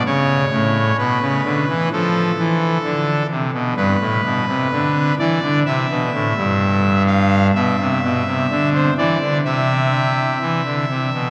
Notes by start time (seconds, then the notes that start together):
0.06 C#3 C#5
0.51 A2
0.98 B2 B4
1.22 C#3
1.45 D3
1.68 E3
1.92 F3 A4
2.39 E3
2.84 D3
3.31 C3
3.53 B2
3.76 G2 B4
4.00 A2
4.24 B2
4.48 C3
4.73 D3
5.19 E3 D5
5.43 D3
5.66 C3 E5
5.90 B2
6.13 A2
6.37 G2
7.07 F5
7.55 B2 E5
7.80 C3
8.03 B2
8.26 C3
8.50 D3
8.74 C5
8.98 E3 D5
9.21 D3
9.45 C3 E5
10.41 E3
10.65 D3
10.90 C3
11.13 B2